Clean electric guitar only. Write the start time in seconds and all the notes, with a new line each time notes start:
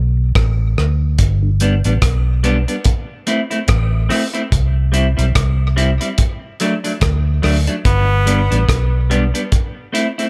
1.61 G3 B3 D4
1.85 G3 B3 D4
2.43 G3 B3 D4
2.68 G3 B3 D4
3.27 A3 C4 E4
3.51 A3 C4 E4
4.09 A3 C4 E4
4.34 A3 C4 E4
4.92 G3 C4 E4
5.17 G3 C4 E4
5.76 G3 C4 E4
6.01 G3 C4 E4
6.60 F#3 A3 D4
6.84 F#3 A3 D4
7.42 F#3 A3 D4
7.67 F#3 A3 D4
8.26 G3 B3 D4
8.51 G3 B3 D4
9.10 G3 B3 D4
9.34 G3 B3 D4
9.93 A3 C4 E4
10.18 A3 C4 E4